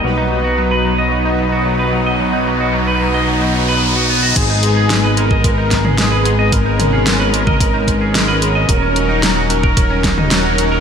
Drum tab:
CC |----------------|----------------|x---------------|----------------|
HH |x-x-x-x-x-x-x-x-|x-x-x-x-x-x-x-x-|x-x-x-x-x-x-x-x-|x-x-x-x-x-x-x-x-|
SD |----------------|----------------|----o-----o-o---|----o-------o---|
T2 |----------------|----------------|-----------o----|--o----o--------|
BD |----------------|----------------|o------oo-o-----|o------oo-o-----|

CC |----------------|
HH |x-x-x-x-x-x-x-x-|
SD |----o-----o-o---|
T2 |-----------o----|
BD |o------oo-o-----|